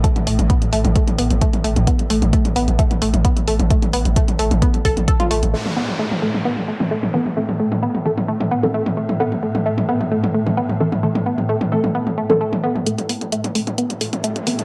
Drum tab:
HH |xxoxxxoxxxoxxxox|xxoxxxoxxxoxxxox|xxoxxxoxxxoxxxox|----------------|
T2 |-o-o-o-o-o-o-o-o|-o-o-o-o-o-o-o-o|-o-o-o-o-o-o-o-o|-o-o-o-o-o-o-o-o|
BD |o---o---o---o---|o---o---o---o---|o---o---o-o-o---|----------------|

HH |----------------|----------------|----------------|xxoxxxoxxxoxxxox|
T2 |-o-o-o-o-o-o-o-o|-o-o-o-o-o-o-o-o|-o-o-o-o-o-o-o-o|-o-o-o-o-o-o-o-o|
BD |----------------|----------------|----------------|----------------|